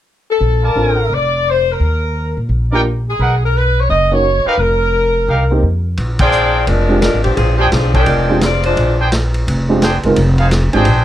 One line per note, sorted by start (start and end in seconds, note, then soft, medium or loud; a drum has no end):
0.30 0.61 A4 medium
0.41 0.73 A#1 medium
0.62 1.08 F4 medium
0.62 1.08 A#4 medium
0.62 1.12 A#4 medium
0.62 1.08 D5 medium
0.62 1.08 A5 medium
0.75 1.08 A1 medium
0.75 0.95 C4 soft
0.75 0.95 D4 soft
0.75 0.96 F4 soft
0.75 0.96 A4 soft
1.10 1.76 F1 medium
1.10 1.47 D5 medium
1.50 1.69 C5 medium
1.72 2.39 A#4 medium
1.80 2.33 D#2 medium
2.37 2.48 A#2 medium
2.49 3.16 A#1 medium
2.71 2.84 A#3 medium
2.71 2.84 D4 soft
2.71 2.80 D#4 medium
2.71 2.84 F4 soft
2.71 2.84 G4 medium
2.71 2.80 A#4 medium
2.71 2.80 D5 medium
2.71 2.80 G5 medium
3.09 3.40 G#4 medium
3.19 3.86 B1 medium
3.19 3.34 D#4 medium
3.19 3.34 A#4 medium
3.19 3.34 B4 medium
3.19 3.34 F#5 medium
3.44 3.56 A#4 medium
3.57 3.78 B4 medium
3.79 3.91 C#5 medium
3.89 4.42 F#1 medium
3.89 4.10 D#5 medium
4.11 4.23 A#3 medium
4.11 4.23 C#4 soft
4.11 4.23 D#4 soft
4.11 4.23 F#4 medium
4.11 4.46 C#5 medium
4.45 4.55 D#4 medium
4.45 4.55 G4 medium
4.45 4.55 A#4 medium
4.45 4.59 B4 medium
4.45 4.55 F5 medium
4.45 muted upright bass stroke soft
4.58 5.25 F1 medium
4.58 5.64 A#4 medium
5.28 5.61 C2 medium
5.28 5.43 D#4 medium
5.28 5.43 G4 medium
5.28 5.43 A#4 medium
5.28 5.43 F5 medium
5.51 5.62 A#3 medium
5.51 5.63 C4 medium
5.51 5.63 D#4 medium
5.51 5.63 G4 medium
5.63 5.96 F2 medium
5.97 6.65 A#1 medium
5.97 ride medium
6.19 6.65 C4 medium
6.19 6.65 D4 medium
6.19 6.65 F4 medium
6.19 6.65 G#4 medium
6.19 6.65 C5 medium
6.19 6.65 D5 medium
6.19 6.65 G5 loud
6.19 kick medium
6.19 ride medium
6.32 hi-hat pedal medium
6.67 7.11 F1 medium
6.67 7.00 G#3 medium
6.67 7.00 D4 medium
6.67 7.00 F4 medium
6.67 7.00 A#4 medium
6.67 ride medium
6.89 7.01 G#3 medium
6.89 7.01 C4 soft
6.89 7.01 D4 medium
6.89 7.02 F4 medium
6.89 7.02 G4 medium
7.01 7.22 G#3 medium
7.01 7.22 D4 medium
7.01 7.22 F4 medium
7.01 7.22 A#4 medium
7.01 snare medium
7.01 hi-hat pedal medium
7.01 ride medium
7.14 7.25 G#1 medium
7.23 7.37 A1 medium
7.23 7.34 F3 medium
7.23 7.34 C4 medium
7.23 7.34 D4 medium
7.23 7.36 G4 medium
7.23 ride soft
7.35 7.70 A#1 medium
7.35 7.56 F3 medium
7.35 7.56 C4 medium
7.35 7.56 D4 medium
7.35 7.57 G#4 medium
7.35 ride medium
7.57 7.69 F3 medium
7.57 7.69 C4 medium
7.57 7.70 D4 medium
7.57 7.68 D4 medium
7.57 7.71 G4 medium
7.57 7.68 G#4 medium
7.57 7.68 C5 medium
7.57 7.68 G5 medium
7.70 8.05 B1 medium
7.70 7.93 F3 medium
7.70 7.93 C4 medium
7.70 7.93 D4 medium
7.70 7.93 G#4 medium
7.70 snare medium
7.70 hi-hat pedal soft
7.70 ride medium
7.93 8.39 G#3 medium
7.93 8.39 D4 medium
7.93 8.38 F4 medium
7.93 8.39 G#4 medium
7.93 8.39 A#4 medium
7.93 8.39 C5 medium
7.93 8.39 G5 medium
7.93 kick medium
7.93 ride soft
8.06 8.73 F1 medium
8.06 ride medium
8.29 8.41 G#3 soft
8.29 8.41 C4 soft
8.29 8.41 D4 soft
8.29 8.41 F4 soft
8.29 8.41 G4 medium
8.41 8.65 C4 medium
8.41 8.64 F4 medium
8.41 8.64 G#4 medium
8.41 8.64 D5 medium
8.41 snare medium
8.41 hi-hat pedal medium
8.41 ride medium
8.63 8.98 G#3 medium
8.63 8.97 D4 medium
8.63 8.97 F4 medium
8.63 8.97 C5 medium
8.63 ride soft
8.77 9.43 A#1 medium
8.77 ride medium
8.99 9.08 D4 medium
8.99 9.08 G#4 medium
8.99 9.08 C5 medium
8.99 9.08 G5 medium
9.12 snare medium
9.12 hi-hat pedal medium
9.12 ride medium
9.34 ride soft
9.47 10.00 F1 medium
9.47 ride medium
9.69 9.81 G#3 medium
9.69 9.81 C4 medium
9.69 9.81 D4 medium
9.69 9.81 F4 medium
9.69 9.81 G4 medium
9.82 9.97 D4 medium
9.82 9.97 G#4 medium
9.82 9.97 C5 medium
9.82 9.97 G5 medium
9.82 snare medium
9.82 hi-hat pedal medium
9.82 ride medium
10.03 10.16 F#1 medium
10.03 10.16 G#3 medium
10.03 10.16 C4 medium
10.03 10.16 D#4 medium
10.03 10.16 F4 medium
10.03 10.17 A#4 medium
10.03 ride soft
10.16 10.69 F1 medium
10.16 ride medium
10.38 10.47 D#4 medium
10.38 10.47 G#4 medium
10.38 10.47 C5 medium
10.38 10.47 F5 medium
10.38 ride soft
10.51 snare medium
10.51 hi-hat pedal soft
10.51 ride medium
10.73 10.86 G#1 medium
10.73 10.85 G#3 medium
10.73 10.85 C4 soft
10.73 10.85 D4 soft
10.73 11.05 D4 medium
10.73 10.86 F4 soft
10.73 10.86 G4 medium
10.73 11.05 G#4 medium
10.73 11.05 C5 medium
10.73 11.05 G5 medium
10.73 ride soft
10.85 11.05 A#1 medium
10.85 ride medium